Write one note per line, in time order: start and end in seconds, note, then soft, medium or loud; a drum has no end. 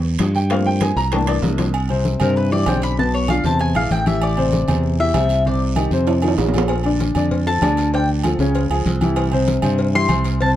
0.00 0.16 E2 loud
0.04 high conga soft
0.19 0.91 G2 loud
0.19 high bongo soft
0.19 low bongo medium
0.19 high conga medium
0.19 high timbale loud
0.19 short guiro medium
0.35 0.50 G5 loud
0.35 high bongo soft
0.35 high conga soft
0.35 short guiro medium
0.50 0.94 F3 medium
0.50 0.95 A3 medium
0.50 0.95 A#3 medium
0.50 0.95 C4 medium
0.50 0.66 F5 medium
0.50 high bongo medium
0.50 high conga soft
0.50 high timbale medium
0.50 long guiro medium
0.66 0.81 G5 loud
0.66 high bongo soft
0.66 high conga soft
0.81 0.97 G#5 loud
0.81 high bongo medium
0.81 high conga loud
0.81 high timbale medium
0.81 short guiro medium
0.96 1.40 C2 medium
0.96 1.12 A#5 loud
0.96 high bongo soft
0.96 short guiro medium
1.12 1.71 E3 medium
1.12 1.71 A3 medium
1.12 1.71 A#3 medium
1.12 1.72 D4 medium
1.12 1.28 A5 medium
1.12 high bongo medium
1.12 high conga soft
1.12 high timbale medium
1.12 long guiro medium
1.27 1.37 D5 loud
1.27 high bongo medium
1.27 high conga soft
1.27 high timbale loud
1.42 2.15 C2 loud
1.42 high conga medium
1.42 low timbale medium
1.42 short guiro medium
1.58 low bongo loud
1.58 high conga medium
1.58 high timbale medium
1.58 short guiro medium
1.74 high conga soft
1.74 low agogo loud
1.74 long guiro medium
1.89 2.15 C3 medium
1.89 2.15 C4 medium
1.89 2.15 C5 medium
1.89 high conga soft
1.89 low agogo medium
2.05 high conga loud
2.05 short guiro medium
2.20 2.64 G2 loud
2.20 2.46 C3 medium
2.20 2.46 C4 medium
2.20 2.36 A#4 medium
2.20 2.47 C5 medium
2.20 high conga soft
2.20 low conga medium
2.20 low agogo loud
2.20 short guiro medium
2.36 2.51 B4 medium
2.36 high conga soft
2.36 long guiro medium
2.52 2.64 E3 medium
2.52 2.64 E4 medium
2.52 2.65 G4 medium
2.52 2.67 D5 loud
2.52 high conga soft
2.66 3.39 B1 medium
2.66 2.92 D3 medium
2.66 2.93 C4 medium
2.66 2.93 C5 medium
2.66 2.82 G5 medium
2.66 high conga medium
2.66 low timbale medium
2.66 low agogo loud
2.66 short guiro medium
2.82 2.98 B5 loud
2.82 high conga soft
2.82 low agogo medium
2.82 short guiro medium
2.97 3.24 B2 medium
2.97 3.24 B3 medium
2.97 3.24 B4 medium
2.97 3.13 A5 medium
2.97 high conga soft
2.97 long guiro medium
3.13 3.29 C#5 medium
3.13 high conga soft
3.28 3.42 D3 medium
3.28 3.42 D4 medium
3.28 3.42 F4 medium
3.28 3.44 F5 medium
3.28 high conga medium
3.28 low agogo loud
3.28 short guiro medium
3.44 3.73 E2 medium
3.44 3.70 C3 medium
3.44 3.70 C4 medium
3.44 3.70 C5 medium
3.44 3.60 A5 loud
3.44 short guiro medium
3.59 3.75 G#5 medium
3.59 high conga soft
3.59 low agogo medium
3.59 long guiro medium
3.75 3.90 A#1 medium
3.75 4.01 E3 medium
3.75 4.01 E4 medium
3.75 4.01 G#4 medium
3.75 3.91 F5 medium
3.75 high conga soft
3.75 low agogo loud
3.91 4.63 A1 loud
3.91 4.06 G5 medium
3.91 high conga medium
3.91 short guiro medium
4.06 4.32 E3 medium
4.06 4.32 E4 medium
4.06 4.32 G4 medium
4.06 4.22 E5 medium
4.06 high conga medium
4.06 low agogo medium
4.06 short guiro medium
4.22 4.80 D5 medium
4.22 high conga soft
4.22 low agogo loud
4.22 long guiro medium
4.37 4.63 C3 medium
4.37 4.63 C4 medium
4.37 4.63 C5 medium
4.37 high conga soft
4.37 low agogo medium
4.52 high conga loud
4.52 short guiro medium
4.68 5.11 E2 loud
4.68 4.94 C3 medium
4.68 4.94 C4 medium
4.68 4.94 C5 medium
4.68 high conga soft
4.68 low conga medium
4.68 low agogo loud
4.68 short guiro medium
4.83 high conga soft
4.83 long guiro medium
4.99 5.12 E3 medium
4.99 5.12 E4 medium
4.99 5.12 G4 medium
4.99 5.43 E5 loud
4.99 high conga soft
5.14 5.86 C2 loud
5.14 5.40 C3 medium
5.14 5.40 C4 medium
5.14 5.41 C5 medium
5.14 high conga medium
5.14 low timbale medium
5.14 low agogo loud
5.14 short guiro medium
5.29 high conga soft
5.29 low agogo medium
5.29 short guiro medium
5.45 5.71 C3 medium
5.45 5.71 C4 medium
5.45 5.71 C5 medium
5.45 5.61 D5 medium
5.45 high conga soft
5.45 long guiro medium
5.61 high conga soft
5.76 5.89 D#3 medium
5.76 5.89 D#4 medium
5.76 5.90 G4 medium
5.76 high conga medium
5.76 low agogo loud
5.76 short guiro medium
5.91 6.35 F2 loud
5.91 6.18 C3 medium
5.91 6.18 C4 medium
5.91 6.18 C5 medium
5.91 short guiro medium
6.07 high conga soft
6.07 high timbale loud
6.07 low agogo medium
6.07 long guiro medium
6.22 6.48 D#3 medium
6.22 6.49 D#4 medium
6.22 6.49 F4 medium
6.22 high conga soft
6.22 low agogo loud
6.28 high timbale medium
6.38 7.10 A#1 loud
6.38 high conga medium
6.38 low timbale medium
6.38 short guiro medium
6.49 low timbale medium
6.54 6.79 F3 medium
6.54 6.79 F4 medium
6.54 6.80 A4 medium
6.54 high conga medium
6.54 low agogo medium
6.54 short guiro medium
6.58 low timbale loud
6.68 cowbell loud
6.68 high conga soft
6.68 low agogo loud
6.68 long guiro medium
6.84 7.11 D3 medium
6.84 7.11 D4 medium
6.84 7.11 D5 medium
6.84 high conga soft
6.84 low agogo medium
7.00 cowbell medium
7.00 high conga medium
7.00 short guiro medium
7.15 7.59 F2 loud
7.15 7.41 D3 medium
7.15 7.42 D4 medium
7.15 7.42 D5 medium
7.15 high conga soft
7.15 low conga medium
7.15 low agogo loud
7.15 short guiro medium
7.31 cowbell loud
7.31 high conga soft
7.31 low conga medium
7.31 long guiro medium
7.47 7.59 F3 medium
7.47 7.60 F4 medium
7.47 7.60 A4 medium
7.47 7.90 A5 loud
7.47 high conga soft
7.62 8.34 D2 loud
7.62 7.88 D3 medium
7.62 7.88 D4 medium
7.62 7.88 D5 medium
7.62 cowbell medium
7.62 high conga medium
7.62 low timbale medium
7.62 low agogo loud
7.62 short guiro medium
7.77 cowbell medium
7.77 high conga soft
7.77 low agogo medium
7.77 short guiro medium
7.93 8.19 D3 medium
7.93 8.19 D4 medium
7.93 8.19 D5 medium
7.93 8.09 G5 medium
7.93 cowbell loud
7.93 high conga soft
7.93 long guiro medium
8.09 high conga soft
8.24 8.37 F3 medium
8.24 8.37 F4 medium
8.24 8.37 A4 medium
8.24 cowbell medium
8.24 high conga loud
8.24 low agogo loud
8.24 short guiro medium
8.39 8.68 C#2 loud
8.39 8.65 C#3 medium
8.39 8.65 C#4 medium
8.39 8.65 C#5 medium
8.39 short guiro medium
8.55 cowbell loud
8.55 high conga soft
8.55 low agogo medium
8.55 long guiro medium
8.70 8.85 C#2 medium
8.70 8.96 F3 medium
8.70 8.96 F4 medium
8.70 8.96 G#4 medium
8.70 high conga soft
8.70 low agogo loud
8.86 9.58 C2 loud
8.86 cowbell medium
8.86 high conga medium
8.86 short guiro medium
9.01 9.27 E3 medium
9.01 9.27 E4 medium
9.01 9.27 G4 medium
9.01 high conga medium
9.01 low agogo medium
9.01 short guiro medium
9.16 cowbell loud
9.16 high conga soft
9.16 low agogo loud
9.16 long guiro medium
9.32 9.58 C3 medium
9.32 9.58 C4 medium
9.32 9.58 C5 loud
9.32 high conga soft
9.32 low agogo medium
9.48 cowbell medium
9.48 high conga loud
9.48 short guiro medium
9.62 10.06 G2 medium
9.62 9.89 C3 medium
9.62 9.89 C4 medium
9.62 9.89 C5 medium
9.62 high conga soft
9.62 low conga medium
9.62 low agogo loud
9.62 short guiro medium
9.78 cowbell loud
9.78 high conga soft
9.78 long guiro medium
9.94 10.07 E3 medium
9.94 10.07 E4 medium
9.94 10.07 G4 medium
9.94 10.38 C6 loud
9.94 high conga soft
10.09 10.56 C2 loud
10.09 10.35 C3 medium
10.09 10.35 C4 medium
10.09 10.35 C5 medium
10.09 cowbell medium
10.09 high conga medium
10.09 low agogo loud
10.09 short guiro medium
10.24 cowbell medium
10.24 high conga soft
10.24 low agogo medium
10.24 short guiro medium
10.41 10.56 C3 medium
10.41 10.56 C4 medium
10.41 10.56 C5 medium
10.41 10.51 A5 loud
10.41 cowbell loud
10.41 high conga soft
10.41 long guiro medium